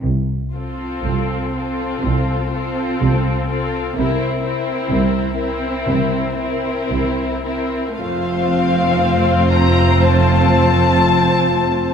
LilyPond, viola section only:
\new Staff \with { instrumentName = "Viola section" } { \time 4/4 \key f \major \tempo 4 = 61 r8 c'4 c'4 c'4 c'8 | c'8 c'4 c'4 c'4 c'8 | <a c'>1 | }